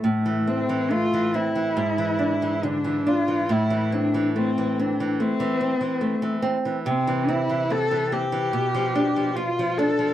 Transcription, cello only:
0, 0, Header, 1, 2, 480
1, 0, Start_track
1, 0, Key_signature, 0, "minor"
1, 0, Tempo, 867052
1, 19, Time_signature, 4, 2, 24, 8
1, 2419, Tempo, 831025
1, 5750, End_track
2, 0, Start_track
2, 0, Title_t, "Cello"
2, 0, Program_c, 0, 42
2, 11, Note_on_c, 0, 57, 49
2, 268, Note_on_c, 0, 60, 55
2, 276, Note_off_c, 0, 57, 0
2, 508, Note_on_c, 0, 65, 65
2, 516, Note_off_c, 0, 60, 0
2, 749, Note_on_c, 0, 64, 52
2, 758, Note_off_c, 0, 65, 0
2, 1462, Note_on_c, 0, 62, 56
2, 1470, Note_off_c, 0, 64, 0
2, 1705, Note_on_c, 0, 65, 58
2, 1714, Note_off_c, 0, 62, 0
2, 1945, Note_on_c, 0, 64, 55
2, 1953, Note_off_c, 0, 65, 0
2, 2180, Note_on_c, 0, 62, 59
2, 2188, Note_off_c, 0, 64, 0
2, 2420, Note_off_c, 0, 62, 0
2, 2426, Note_on_c, 0, 60, 54
2, 2668, Note_on_c, 0, 62, 51
2, 2677, Note_off_c, 0, 60, 0
2, 2903, Note_on_c, 0, 60, 62
2, 2912, Note_off_c, 0, 62, 0
2, 3615, Note_off_c, 0, 60, 0
2, 3863, Note_on_c, 0, 60, 57
2, 4105, Note_on_c, 0, 64, 59
2, 4114, Note_off_c, 0, 60, 0
2, 4349, Note_on_c, 0, 69, 69
2, 4358, Note_off_c, 0, 64, 0
2, 4588, Note_on_c, 0, 67, 56
2, 4597, Note_off_c, 0, 69, 0
2, 5301, Note_on_c, 0, 65, 63
2, 5310, Note_off_c, 0, 67, 0
2, 5543, Note_on_c, 0, 69, 66
2, 5552, Note_off_c, 0, 65, 0
2, 5750, Note_off_c, 0, 69, 0
2, 5750, End_track
0, 0, End_of_file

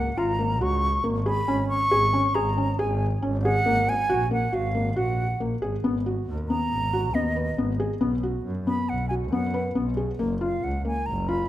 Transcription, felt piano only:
0, 0, Header, 1, 2, 480
1, 0, Start_track
1, 0, Tempo, 436047
1, 1629, Time_signature, 5, 2, 24, 8
1, 12645, End_track
2, 0, Start_track
2, 0, Title_t, "Felt piano"
2, 0, Program_c, 0, 0
2, 192, Note_on_c, 0, 65, 82
2, 334, Note_off_c, 0, 65, 0
2, 427, Note_on_c, 0, 58, 66
2, 571, Note_off_c, 0, 58, 0
2, 670, Note_on_c, 0, 66, 77
2, 957, Note_off_c, 0, 66, 0
2, 1142, Note_on_c, 0, 58, 80
2, 1288, Note_off_c, 0, 58, 0
2, 1386, Note_on_c, 0, 68, 72
2, 1531, Note_off_c, 0, 68, 0
2, 1628, Note_on_c, 0, 61, 83
2, 1915, Note_off_c, 0, 61, 0
2, 2107, Note_on_c, 0, 68, 84
2, 2252, Note_off_c, 0, 68, 0
2, 2348, Note_on_c, 0, 61, 73
2, 2492, Note_off_c, 0, 61, 0
2, 2590, Note_on_c, 0, 68, 82
2, 2734, Note_off_c, 0, 68, 0
2, 2835, Note_on_c, 0, 61, 67
2, 2977, Note_off_c, 0, 61, 0
2, 3071, Note_on_c, 0, 68, 82
2, 3358, Note_off_c, 0, 68, 0
2, 3549, Note_on_c, 0, 61, 75
2, 3693, Note_off_c, 0, 61, 0
2, 3799, Note_on_c, 0, 68, 77
2, 3940, Note_off_c, 0, 68, 0
2, 4028, Note_on_c, 0, 58, 85
2, 4316, Note_off_c, 0, 58, 0
2, 4507, Note_on_c, 0, 66, 88
2, 4652, Note_off_c, 0, 66, 0
2, 4744, Note_on_c, 0, 58, 72
2, 4890, Note_off_c, 0, 58, 0
2, 4982, Note_on_c, 0, 66, 77
2, 5128, Note_off_c, 0, 66, 0
2, 5225, Note_on_c, 0, 58, 68
2, 5371, Note_off_c, 0, 58, 0
2, 5464, Note_on_c, 0, 66, 76
2, 5753, Note_off_c, 0, 66, 0
2, 5948, Note_on_c, 0, 58, 71
2, 6093, Note_off_c, 0, 58, 0
2, 6186, Note_on_c, 0, 68, 70
2, 6331, Note_off_c, 0, 68, 0
2, 6428, Note_on_c, 0, 59, 79
2, 6572, Note_off_c, 0, 59, 0
2, 6671, Note_on_c, 0, 66, 59
2, 6958, Note_off_c, 0, 66, 0
2, 7153, Note_on_c, 0, 59, 62
2, 7439, Note_off_c, 0, 59, 0
2, 7631, Note_on_c, 0, 66, 69
2, 7774, Note_off_c, 0, 66, 0
2, 7868, Note_on_c, 0, 59, 72
2, 8012, Note_off_c, 0, 59, 0
2, 8103, Note_on_c, 0, 71, 56
2, 8249, Note_off_c, 0, 71, 0
2, 8347, Note_on_c, 0, 59, 68
2, 8491, Note_off_c, 0, 59, 0
2, 8582, Note_on_c, 0, 68, 71
2, 8728, Note_off_c, 0, 68, 0
2, 8815, Note_on_c, 0, 59, 77
2, 8962, Note_off_c, 0, 59, 0
2, 9063, Note_on_c, 0, 66, 62
2, 9351, Note_off_c, 0, 66, 0
2, 9545, Note_on_c, 0, 59, 65
2, 9832, Note_off_c, 0, 59, 0
2, 10025, Note_on_c, 0, 66, 62
2, 10169, Note_off_c, 0, 66, 0
2, 10263, Note_on_c, 0, 59, 72
2, 10408, Note_off_c, 0, 59, 0
2, 10500, Note_on_c, 0, 71, 68
2, 10645, Note_off_c, 0, 71, 0
2, 10736, Note_on_c, 0, 59, 75
2, 10882, Note_off_c, 0, 59, 0
2, 10975, Note_on_c, 0, 68, 64
2, 11121, Note_off_c, 0, 68, 0
2, 11219, Note_on_c, 0, 58, 81
2, 11364, Note_off_c, 0, 58, 0
2, 11458, Note_on_c, 0, 65, 68
2, 11746, Note_off_c, 0, 65, 0
2, 11940, Note_on_c, 0, 58, 66
2, 12227, Note_off_c, 0, 58, 0
2, 12422, Note_on_c, 0, 65, 65
2, 12565, Note_off_c, 0, 65, 0
2, 12645, End_track
0, 0, End_of_file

